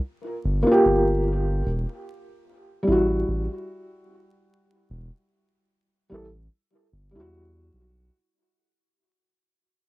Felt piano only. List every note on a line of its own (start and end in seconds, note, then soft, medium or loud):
0.63 1.61 A#3 medium
0.67 1.64 F4 medium
0.72 1.66 G4 loud
2.83 6.05 G3 medium
2.87 6.07 E4 medium
2.92 6.10 F#4 medium
6.10 6.22 G3 medium
6.10 6.23 E4 medium
6.14 6.24 A4 loud
7.11 8.10 G3 medium
7.15 8.12 E4 medium
7.20 8.14 F#4 loud